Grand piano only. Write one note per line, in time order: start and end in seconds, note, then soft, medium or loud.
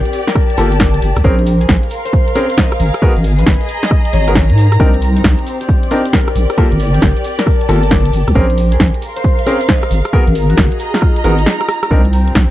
0.58 0.67 A#3 medium
0.58 0.67 F4 medium
0.58 0.67 G4 medium
0.58 0.67 A4 loud
1.24 1.33 C4 loud
1.24 1.33 C#4 medium
1.24 1.33 G#4 medium
1.24 1.33 A#4 loud
2.35 2.44 C4 medium
2.35 2.44 C#4 medium
2.35 2.44 G#4 medium
2.35 2.44 A#4 medium
3.02 3.11 B3 loud
3.02 3.11 F#4 medium
3.02 3.11 G#4 medium
3.02 3.11 A#4 loud
4.28 4.33 B3 medium
4.28 4.33 F#4 medium
4.28 4.33 G#4 medium
4.28 4.33 A#4 medium
4.80 4.89 C4 medium
4.80 4.89 D4 medium
4.80 4.89 D#4 medium
4.80 4.89 A#4 loud
5.91 6.00 C4 medium
5.91 6.00 D4 medium
5.91 6.00 D#4 medium
5.91 6.00 A#4 medium
6.58 6.67 A#3 medium
6.58 6.67 F4 medium
6.58 6.67 G4 medium
6.58 6.67 A4 loud
7.69 7.78 A#3 medium
7.69 7.78 F4 medium
7.69 7.78 G4 medium
7.69 7.78 A4 loud
8.35 8.44 C4 loud
8.35 8.44 C#4 medium
8.35 8.44 G#4 medium
8.35 8.44 A#4 loud
9.47 9.55 C4 medium
9.47 9.55 C#4 medium
9.47 9.55 G#4 medium
9.47 9.55 A#4 medium
10.13 10.22 B3 loud
10.13 10.22 F#4 medium
10.13 10.22 G#4 medium
10.13 10.22 A#4 loud
11.24 11.33 B3 medium
11.24 11.33 F#4 medium
11.24 11.33 G#4 medium
11.24 11.33 A#4 medium
11.91 12.00 C4 medium
11.91 12.00 D4 medium
11.91 12.00 D#4 medium
11.91 12.00 A#4 loud